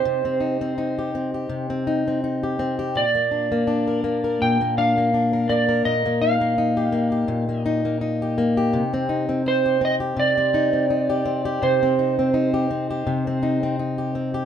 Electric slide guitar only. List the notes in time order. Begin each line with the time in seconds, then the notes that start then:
Already playing: C5
2.97 D5
4.42 G5
4.78 F5
5.49 D5
5.85 D#5
6.22 F5
7.60 D#5
9.48 C5
9.85 D#5
10.20 D5
11.63 C5